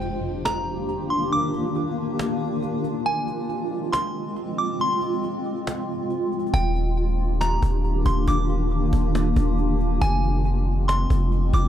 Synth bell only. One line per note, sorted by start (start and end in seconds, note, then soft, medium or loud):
0.00 0.41 G5 loud
0.45 1.06 A#5 medium
1.10 1.31 C6 medium
1.33 2.59 D6 loud
3.06 3.89 G#5 loud
3.92 4.54 C6 medium
4.58 4.79 D6 medium
4.81 6.07 C6 loud
6.54 7.37 G5 loud
7.41 8.02 A#5 medium
8.06 8.26 C6 medium
8.28 9.54 D6 loud
10.01 10.84 G#5 loud
10.88 11.50 C6 loud
11.54 11.68 D6 medium